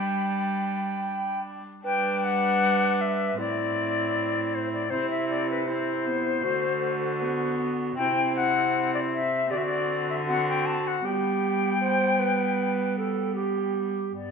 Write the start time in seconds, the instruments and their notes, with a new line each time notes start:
Already playing: cello G3, viola D4, recorder G5, flute B5
1.84 cello G3, viola D4, recorder B4, flute G5
2.24 flute F#5
3.01 flute E5
3.37 cello A2, viola C4, recorder E4, flute D5
4.55 flute C5
4.73 flute D5
4.90 cello C3, viola C4, recorder E4, flute C5
5.10 flute E5
5.29 flute D5
5.50 flute B4
5.67 viola C4, recorder E4, flute C5
6.06 viola B3
6.43 cello D3, viola A3, recorder F#4
7.21 viola B3
7.96 cello C3, viola C4, recorder E4, flute G5
8.36 flute F#5
8.94 flute D5
9.12 flute E5
9.50 cello D3, viola C4, recorder G4, flute D5
9.55 recorder F#4, flute E5
9.64 flute D5
10.10 flute E5
10.27 viola C4, recorder F#4, flute F#5
10.49 flute G5
10.66 flute A5
10.87 flute F#5
11.04 cello G3, viola B3, recorder G4, flute G5
11.81 recorder C5
12.19 recorder B4
12.98 recorder A4
13.35 recorder G4
14.13 cello G2, viola B3, flute D5